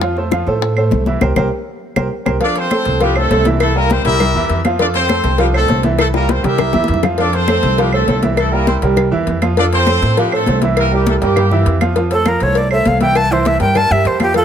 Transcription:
Already playing: F2
0.01 F3 F4 F5, high bongo
0.17 A3 A4 C5, high bongo, high conga
0.31 F3 F4 F5, high bongo, high conga, claves
0.46 A2 A3 A4 C5, high bongo, high conga
0.61 high bongo, high conga
0.77 A3 A4 C5, high conga, claves
0.91 C2, high bongo, low bongo, high conga
1.06 E3 E4 E5, high bongo, high conga
1.21 C2 G4 A#4 C5, low bongo, high conga, claves
1.36 C2 G4 A#4 C5, low bongo, high conga, claves
1.96 C2 G4 A#4 C5, low bongo, high conga, claves
2.25 C2 G4 A#4 C5, low bongo, high conga, claves
2.40 F3 D4 F4 A4 D5 F5, cowbell, high conga
2.56 C4 A4 C5, cowbell, high conga
2.71 A3 A4 C5, cowbell, high conga, claves
2.85 C2, cowbell, high conga
3.01 F3 G3 C4 D4 F4 G4 F5, cowbell, high conga
3.15 A3 C4 D4 A4 C5, high conga, claves
3.30 C2 A3 A4 C5, cowbell, high conga
3.45 E3 E4 E5, cowbell, high conga
3.60 A3 E4 A4, cowbell, high conga, claves
3.75 G3 A#3 G4 A#4, high conga
3.90 C4 C5, cowbell, high conga
4.05 C2 G3 E4 G4 A#4 E5, cowbell
4.20 cowbell, high conga, low conga, claves
4.34 E2 E3 E4 E5, high conga
4.49 F2, cowbell, high conga
4.65 F3 F4 F5, cowbell, high conga, claves
4.79 F3 D4 F4 A4 D5 F5, cowbell, high conga
4.94 C4 A4 C5, cowbell, high conga
5.09 A3 A4 C5, cowbell, high conga, claves
5.24 C2, cowbell, high conga
5.38 F3 G3 C4 D4 F4 G4 F5, cowbell, high conga
5.53 A3 C4 D4 A4 C5, high conga, claves
5.68 C2 A3 A4 C5, cowbell, high conga
5.83 E3 E4 E5, cowbell, high conga
5.99 A3 E4 A4, cowbell, high bongo, claves
6.14 G3 A#3 G4 A#4, high bongo, high conga
6.29 C4 C5, cowbell, high bongo, high conga
6.43 C2 G3 E4 G4 A#4 E5, cowbell, low bongo
6.58 cowbell, low bongo, high conga, low conga, claves
6.73 E2 E3 E4 E5, low bongo, high conga
6.84 high conga
6.88 F2, cowbell
6.94 low conga
7.03 F3 F4 F5, cowbell, low bongo, low conga, claves
7.18 F3 D4 F4 A4 D5 F5, cowbell, high conga
7.33 C4 A4 C5, cowbell, high conga
7.48 A3 A4 C5, cowbell, high conga, claves
7.63 C2, cowbell, high conga
7.78 F3 G3 C4 D4 F4 G4 F5, cowbell, high conga
7.93 A3 C4 D4 A4 C5, high conga, claves
8.07 C2 A3 A4 C5, cowbell, high conga
8.22 E3 E4 E5, cowbell, high conga
8.37 A3 E4 A4, cowbell, high conga, claves
8.52 G3 A#3 G4 A#4, high conga
8.67 C4 C5, cowbell, high conga
8.82 C2 G3 G4 A#4, cowbell
8.97 cowbell, high conga, low conga, claves
9.11 E2 E3 E4 E5, high conga
9.27 F2, cowbell, high conga
9.42 F3 F4 F5, cowbell, high conga, claves
9.57 F3 D4 F4 A4 D5 F5, cowbell, high conga
9.72 C4 A4 C5, cowbell, high conga
9.87 A3 A4 C5, cowbell, high conga, claves
10.02 A2, cowbell, high conga
10.17 F3 G3 C4 D4 F4 G4 F5, cowbell, high conga
10.32 A3 C4 D4 A4 C5, high conga, claves
10.46 C2 A3 A4 C5, cowbell, high conga
10.62 E3 E4 E5, cowbell, high conga
10.77 A#3 E4 G4 A#4, cowbell, claves
10.92 G3 G4 A#4, high conga
11.07 A3 A4, cowbell, high conga
11.21 G2 G3 A#3 E4 G4 A#4, cowbell
11.36 cowbell, high conga, low conga, claves
11.51 E3 E4 E5, high conga, low conga
11.66 F2, cowbell, high conga
11.81 F3 F4 F5, cowbell, high conga, claves
11.96 F3 F4 F5, cowbell, high conga
12.11 A3 A4 C5, cowbell, high conga
12.25 F3 F4 A#4 F5, cowbell, high conga, claves
12.40 C2 A3 A4 C5 C#5, cowbell, high conga
12.55 D5, cowbell, high conga
12.71 A3 A4 C5 E5, high conga, claves
12.85 C2 F5, cowbell, high conga
13.01 E3 E4 E5 G5, cowbell, high conga
13.15 A5, cowbell, high conga, claves
13.31 E3 E4 C5 E5, high conga
13.45 E5, cowbell, high conga
13.60 G2 G3 G4 A#4 G5, cowbell
13.75 G3 G4 A#4 A5, cowbell, high conga, low conga, claves
13.90 G2 G3 G4 A#4 E5, high conga, low conga
14.05 F2 C5, cowbell, high conga
14.20 F3 F4 G4 F5, cowbell, high conga, claves
14.34 F3 F4 A4 F5, cowbell, high conga

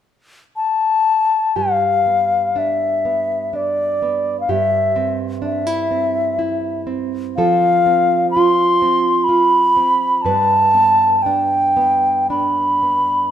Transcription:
0.56 A5
1.56 G2 G4 F5
2.06 B3
2.56 D4 E5
3.05 B3
3.53 D4 D5
4.02 B3
4.40 F5
4.49 G2 G4 E5
4.96 C4
5.42 D4 E5
5.67 E4
5.91 C4
6.39 E4
6.87 C4
7.36 F3 A4 F5
7.86 C4
8.31 C6
8.36 F4
8.82 C4
9.24 B5
9.29 F4
9.77 C4
10.17 B5
10.22 G2 B4 A5
10.74 B3
11.22 D4 G5
11.77 B3
12.30 D4 B5
12.83 B3

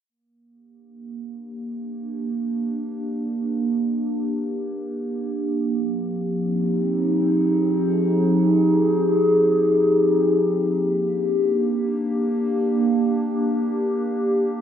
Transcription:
0.09 A#3
0.48 G4
0.69 D4
5.25 F3
5.68 C4
5.96 D#4
6.97 G#4
10.41 A#3
10.64 D4

